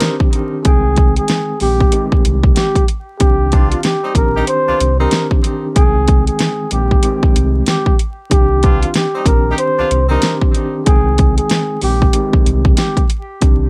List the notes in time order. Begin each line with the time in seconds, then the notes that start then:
Already playing: D#3 G3 C4 D4 D#4 G4 A#4
0.00 snare, closed hi-hat
0.20 kick
0.33 D#3 C4 D4 G4, closed hi-hat
0.65 C2 D#3 G#3 C4 G#4 G5, kick, closed hi-hat
0.96 kick, closed hi-hat
1.16 G#4, closed hi-hat
1.28 snare, closed hi-hat
1.60 A#1 D#3 G#3 C4 G4, open hi-hat
1.80 kick
1.92 D#3 G#3 C4 G4, closed hi-hat
2.12 C2, kick
2.25 C2, closed hi-hat
2.43 kick
2.56 G4, snare, closed hi-hat
2.75 kick, closed hi-hat
2.88 closed hi-hat
3.19 C2 D#3 C4 D4 G4, kick, closed hi-hat
3.52 B3 D4 F4, kick, closed hi-hat
3.71 F4, closed hi-hat
3.83 G4, snare, closed hi-hat
4.02 G3 C4 D#4
4.15 A#1 D#3 C4 D4 G4 A#4, kick, closed hi-hat
4.35 G3 D#4 G4
4.47 C5, closed hi-hat
4.68 C2 B3 D4 F4
4.80 C2, closed hi-hat
4.98 D#3 G3 C4 D4 D#4 G4 A#4
5.11 snare, closed hi-hat
5.31 kick
5.44 D#3 C4 D4 G4, closed hi-hat
5.76 C2 D#3 G#3 C4 G#4 G5, kick, closed hi-hat
6.08 kick, closed hi-hat
6.27 G#4, closed hi-hat
6.39 snare, closed hi-hat
6.71 A#1 D#3 G#3 C4 G4, closed hi-hat
6.91 kick
7.03 D#3 G#3 C4 G4, closed hi-hat
7.23 C2, kick
7.36 C2, closed hi-hat
7.66 G4, snare, closed hi-hat
7.86 kick
7.99 closed hi-hat
8.30 C2 D#3 C4 D4 G4, kick, closed hi-hat
8.62 B3 D4 F4, kick, closed hi-hat
8.82 F4, closed hi-hat
8.94 G4, snare, closed hi-hat
9.15 G3 C4 D#4
9.25 A#1 D#3 C4 D4 G4 A#4, kick, closed hi-hat
9.49 G3 D#4 G4
9.58 C5, closed hi-hat
9.78 C2 B3 D4 F4
9.91 C2, closed hi-hat
10.08 D#3 G3 C4 D4 D#4 G4 A#4
10.22 snare, closed hi-hat
10.41 kick
10.54 D#3 C4 D4 G4, closed hi-hat
10.86 C2 D#3 G#3 C4 G#4 G5, kick, closed hi-hat
11.18 kick, closed hi-hat
11.38 G#4, closed hi-hat
11.50 snare, closed hi-hat
11.81 A#1 D#3 G#3 C4 G4, open hi-hat
12.02 kick
12.13 D#3 G#3 C4 G4, closed hi-hat
12.33 C2, kick
12.46 C2, closed hi-hat
12.65 kick
12.77 G4, snare, closed hi-hat
12.97 kick, closed hi-hat
13.10 closed hi-hat
13.41 C2 D#3 C4 D4 G4, kick, closed hi-hat